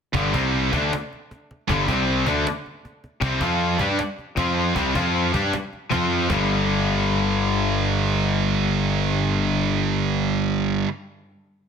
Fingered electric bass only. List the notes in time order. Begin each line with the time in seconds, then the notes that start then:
0.14 G1
0.34 C2
0.73 D2
1.70 G1
1.88 C2
2.27 D2
3.22 C2
3.41 F2
3.80 G2
4.37 F2
4.76 C2
4.95 F2
5.34 G2
5.92 F2
6.30 G1